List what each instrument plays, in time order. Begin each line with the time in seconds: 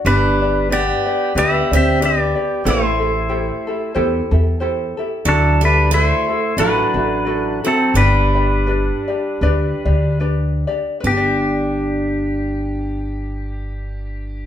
0.05 upright bass G1, steel-string acoustic guitar G3, ukulele D4 G4 B4 D5, pedal steel guitar D4 B4
0.42 ukulele D4 G4 D5
0.69 steel-string acoustic guitar B3, ukulele D4 G4 B4 D5, pedal steel guitar G4 D5
1.06 ukulele D4 G4 D5
1.35 upright bass D2, steel-string acoustic guitar B3, ukulele D4 G4 B4 D5, pedal steel guitar G4 E5
1.71 upright bass D2, steel-string acoustic guitar C4, ukulele D4 G4 D5
1.75 pedal steel guitar G4 E5
2.00 steel-string acoustic guitar B3, ukulele D4 G4 B4 D5, pedal steel guitar G4
2.05 pedal steel guitar D5
2.35 ukulele D4 G4 D5
2.64 upright bass A1, steel-string acoustic guitar A3, ukulele E4 G4 A4 C5
2.68 pedal steel guitar E4 C5
3.00 ukulele E4 G4 A4
3.29 ukulele E4 G4 A4 C5
3.67 ukulele E4 G4 A4
3.95 upright bass E2, ukulele E4 G4 A4 C5
4.31 upright bass E2, ukulele E4 G4 A4
4.60 ukulele E4 G4 A4 C5
4.97 ukulele E4 G4 A4
5.25 upright bass D2, steel-string acoustic guitar F#3, pedal steel guitar D4 A4, ukulele E4 F#4 A4 D5
5.61 steel-string acoustic guitar G3, pedal steel guitar D4, ukulele E4 F#4 A4
5.65 pedal steel guitar B4
5.91 steel-string acoustic guitar A3, ukulele E4 F#4 A4 D5, pedal steel guitar E4 B4
6.05 pedal steel guitar C5
6.29 ukulele E4 F#4 A4
6.57 upright bass A1, steel-string acoustic guitar F#3, pedal steel guitar D4 B4, ukulele E4 F#4 A4 D5
6.94 upright bass A1, ukulele E4 F#4 A4
7.25 ukulele E4 F#4 A4 D5
7.64 steel-string acoustic guitar F#3, pedal steel guitar C4, ukulele E4 F#4 A4
7.68 pedal steel guitar A4
7.94 upright bass G1, steel-string acoustic guitar G3, ukulele D4 G4 B4 D5, pedal steel guitar D4 B4
8.35 ukulele D4 G4 D5
8.67 ukulele D4 G4 B4 D5
9.08 ukulele D4 G4 D5
9.41 upright bass D2, ukulele D4 G4 B4 D5
9.85 upright bass D2, ukulele D4 G4 D5
10.20 ukulele D4 G4 B4 D5
10.67 ukulele D4 G4 D5
11.00 upright bass G1, steel-string acoustic guitar D4, ukulele B4
11.07 ukulele D4, pedal steel guitar G4
11.12 ukulele G4
11.17 ukulele D5